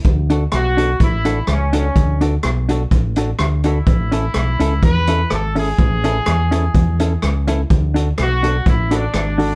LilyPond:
<<
  \new Staff \with { instrumentName = "Hollow-body jazz guitar" } { \time 4/4 \key d \lydian \tempo 4 = 125 r8 <d' fis' a'>8 r8 <d' fis' a'>8 r8 <d' fis' a'>8 r8 <d' fis' a'>8 | r8 <d' fis' a'>8 r8 <d' fis' a'>8 r8 <d' fis' a'>8 r8 <d' fis' a'>8 | r8 <cis' e' a'>8 r8 <cis' e' a'>8 r8 <cis' e' a'>8 r8 <cis' e' a'>8 | r8 <cis' e' a'>8 r8 <cis' e' a'>8 r8 <cis' e' a'>8 r8 <cis' e' a'>8 |
r8 <d' fis' a'>8 r8 <d' fis' a'>8 r8 <d' fis' a'>8 r8 <d' fis' a'>8 | }
  \new Staff \with { instrumentName = "Horn section" } { \time 4/4 \key d \lydian r4 fis'4 e'4 cis'8 cis'8~ | cis'8 r2. e'8~ | e'2 b'4 a'8 gis'8~ | gis'2.~ gis'8 r8 |
r4 fis'4 e'8 d'4. | }
  \new Staff \with { instrumentName = "Fingered electric bass" } { \clef bass \time 4/4 \key d \lydian d,4 b,,4 a,,4 cis,4 | d,4 b,,4 a,,4 d,4 | a,,4 b,,8 cis,8 e,4 gis,,4 | a,,4 e,4 e,4 cis,4 |
d,4 b,,4 a,,4 gis,,4 | }
  \new DrumStaff \with { instrumentName = "Drums" } \drummode { \time 4/4 <hh bd>8 hh8 <hh ss>8 hh8 <hh bd>8 hh8 <hh ss>8 hh8 | <hh bd>8 hh8 <hh ss>8 hh8 <hh bd>8 hh8 <hh ss>8 hh8 | <hh bd>8 hh8 <hh ss>8 hh8 <hh bd>8 hh8 <hh ss>8 hho8 | <hh bd>8 hh8 <hh ss>8 hh8 <hh bd>8 hh8 <hh ss>8 hh8 |
<hh bd>8 hh8 <hh ss>8 hh8 <hh bd>8 hh8 <hh ss>8 hho8 | }
>>